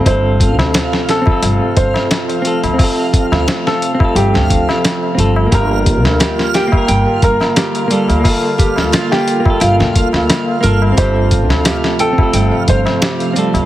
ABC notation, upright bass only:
X:1
M:4/4
L:1/16
Q:"Swing 16ths" 1/4=88
K:Fmix
V:1 name="Upright bass" clef=bass
G,,,3 D,, z4 G,,, z G,,, z4 D,, | z3 D,, z4 G,,, D,,2 z3 G,,,2 | G,,,3 D,, z4 G,,, z G,,, z4 D,, | z3 D,, z4 G,,, D,,2 D,, z2 G,,,2 |
G,,,3 D,, z4 G,,, z G,,, z4 D,, |]